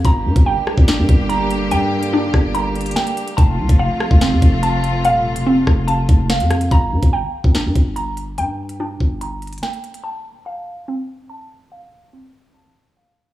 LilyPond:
<<
  \new Staff \with { instrumentName = "Synth pluck" } { \time 4/4 \key g \minor \tempo 4 = 144 bes''4 g''4 d'4 bes''4 | g''4 d'4 bes''4 g''4 | a''4 f''4 c'4 a''4 | f''4 c'4 a''4 f''4 |
bes''4 g''4 d'4 bes''4 | g''4 d'4 bes''4 g''4 | a''4 f''4 c'4 a''4 | f''4 c'4 a''4 f''4 | }
  \new Staff \with { instrumentName = "String section" } { \clef bass \time 4/4 \key g \minor <d g bes g'>1~ | <d g bes g'>1 | <c f a f'>1~ | <c f a f'>1 |
r1 | r1 | r1 | r1 | }
  \new Staff \with { instrumentName = "808-style bass" } { \clef bass \time 4/4 \key g \minor g,,8 g,16 g,,8 r8 g,,8 g,16 g,,4. | g,4. g,,4. r4 | f,,8 c,16 f,,8 r8 f,,8 f,16 f,,4. | ees,,8. f,,8. f,,4 f,,8. f,8. |
g,,8 g,16 g,,8 r8 g,,8 g,16 g,,4. | g,4. g,,4. r4 | r1 | r1 | }
  \new DrumStaff \with { instrumentName = "Drums" } \drummode { \time 4/4 <hh bd>8. <hh bd>16 r8 ss16 bd16 <hh sn>8 <hh bd>8 hh8 hh8 | hh8. hh16 r8 <bd ss>8 hh8 hh32 hh32 hh32 hh32 <hh sn>16 hh16 hh16 hh16 | <hh bd>8. <hh bd>16 r8 ss16 bd16 <hh sn>8 <hh bd>8 hh8 hh8 | hh8. hh16 r8 <bd ss>8 hh8 <hh bd>8 <hh sn>16 hh16 <hh ss>16 hh16 |
<hh bd>8. <hh bd>16 r8. bd16 <hh sn>8 <hh bd>8 hh8 hh8 | hh8. hh16 r8 bd8 hh8 hh32 hh32 hh32 hh32 <hh sn>16 hh16 hh16 hh16 | r4 r4 r4 r4 | r4 r4 r4 r4 | }
>>